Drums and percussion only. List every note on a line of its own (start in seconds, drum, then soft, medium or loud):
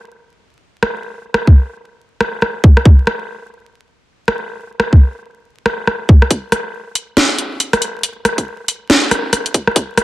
0.83 cross-stick medium
1.34 cross-stick medium
1.47 kick soft
2.21 cross-stick medium
2.42 cross-stick medium
2.64 kick loud
2.77 cross-stick medium
2.85 kick loud
3.07 cross-stick medium
4.28 cross-stick medium
4.80 cross-stick medium
4.93 kick medium
5.66 cross-stick medium
5.87 cross-stick medium
6.09 kick medium
6.22 cross-stick soft
6.31 kick loud
6.31 closed hi-hat medium
6.52 cross-stick medium
6.52 closed hi-hat soft
6.95 closed hi-hat medium
7.17 snare loud
7.17 closed hi-hat medium
7.38 closed hi-hat medium
7.60 closed hi-hat medium
7.73 cross-stick medium
7.73 closed hi-hat soft
7.82 closed hi-hat medium
8.03 closed hi-hat medium
8.25 cross-stick medium
8.25 closed hi-hat soft
8.38 kick medium
8.38 closed hi-hat soft
8.68 closed hi-hat medium
8.90 snare loud
8.90 closed hi-hat medium
9.11 cross-stick medium
9.11 closed hi-hat medium
9.33 cross-stick soft
9.33 closed hi-hat medium
9.46 closed hi-hat soft
9.54 kick loud
9.54 closed hi-hat medium
9.67 cross-stick soft
9.76 kick loud
9.76 closed hi-hat medium
9.97 cross-stick medium
9.97 closed hi-hat soft